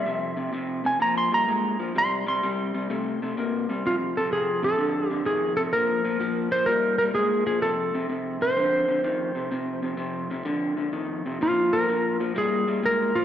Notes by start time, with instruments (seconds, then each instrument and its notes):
Already playing: electric slide guitar E5
0.05 clean electric guitar F2 C3
0.36 clean electric guitar F2 C3
0.52 clean electric guitar F2 C3
0.84 clean electric guitar F2 C3, electric slide guitar G#5
1.00 clean electric guitar A#2 F3, electric slide guitar A#5
1.18 electric slide guitar C6
1.32 clean electric guitar A#2 G3, electric slide guitar A#5
1.48 clean electric guitar A#2 G#3
1.79 clean electric guitar A#2 F3
1.95 clean electric guitar C3 G3, electric slide guitar C6
2.27 clean electric guitar C3 G3, electric slide guitar C6
2.43 clean electric guitar C3 G3
2.74 clean electric guitar C3 G3
2.90 clean electric guitar C3 A3
3.22 clean electric guitar C3 A3
3.37 clean electric guitar C3 A#3
3.69 clean electric guitar C3 G3
3.85 clean electric guitar F2 C3, electric slide guitar F4
4.17 clean electric guitar F2 C3, electric slide guitar A4
4.31 clean electric guitar F2 C3, electric slide guitar G#4
4.63 clean electric guitar F2 C3, electric slide guitar A4
4.78 clean electric guitar F2 D3
5.07 clean electric guitar F2 D3, electric slide guitar G4
5.25 clean electric guitar F2 D#3, electric slide guitar G#4
5.57 clean electric guitar F2 C3, electric slide guitar A4
5.73 clean electric guitar A#2 F3, electric slide guitar A#4
6.04 clean electric guitar A#2 F3
6.20 clean electric guitar A#2 F3
6.51 clean electric guitar A#2 F3, electric slide guitar C5
6.66 clean electric guitar A#2 G3, electric slide guitar A#4
6.98 clean electric guitar A#2 G3, electric slide guitar A#4
7.14 clean electric guitar A#2 G#3, electric slide guitar G#4
7.46 clean electric guitar A#2 F3, electric slide guitar G#4
7.61 clean electric guitar F2 C3, electric slide guitar A4
7.94 clean electric guitar F2 C3
8.08 clean electric guitar F2 C3
8.41 clean electric guitar F2 C3, electric slide guitar C5
8.56 clean electric guitar F2 D3
8.88 clean electric guitar F2 D3
9.04 clean electric guitar F2 D#3
9.35 clean electric guitar F2 C3
9.51 clean electric guitar F2 C3
9.82 clean electric guitar F2 C3
9.97 clean electric guitar F2 C3
10.30 clean electric guitar F2 C3
10.45 clean electric guitar F2 D3
10.77 clean electric guitar F2 D3
10.92 clean electric guitar F2 D#3
11.25 clean electric guitar F2 C3
11.41 clean electric guitar A#2 F3, electric slide guitar F4
11.73 clean electric guitar A#2 F3, electric slide guitar A#4
11.89 clean electric guitar A#2 F3
12.20 clean electric guitar A#2 F3
12.35 clean electric guitar A#2 G3, electric slide guitar G#4
12.67 clean electric guitar A#2 G3
12.83 clean electric guitar A#2 G#3, electric slide guitar A#4
13.15 clean electric guitar A#2 F3, electric slide guitar F4